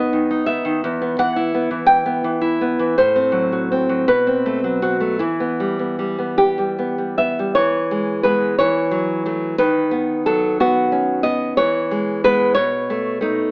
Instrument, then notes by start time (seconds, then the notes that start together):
nylon-string guitar
Already playing: D#3 B3 D#4 D#5
0.13 D#3
0.31 D#4
0.46 B3 E5
0.65 D#3
0.84 E2
1.02 B3
1.19 E3 F#5
1.36 E4
1.54 B3
1.71 E3
1.86 G5
2.06 B3
2.24 E3
2.41 E4
2.61 B3
2.79 E3
2.98 A2 C5
3.16 C4
3.32 F#3
3.52 F#4
3.72 C4
3.89 F#3
4.08 B2 B4
4.27 C4
4.46 A3
4.64 F#3
4.82 C4 F#4
5.00 A3
5.19 E3 E4
5.40 B3
5.60 G3
5.79 B3
5.99 G3
6.19 B3
6.38 G4
6.58 G3
6.79 B3
6.98 G3
7.18 B3 E5
7.39 G3
7.55 E3 C#5
7.91 G#3
8.23 G#3 B3 B4
8.58 E3 C#5
8.91 F#3
9.26 F#3 A3
9.58 D#3 B4
9.91 B3
10.26 F#3 A4
10.60 B3 F#4
10.92 C#4
11.23 B3 D#5
11.57 E3 C#5
11.91 G#3
12.24 G#3 B3 B4
12.55 B2 C#5
12.90 A3
13.21 A3 D#4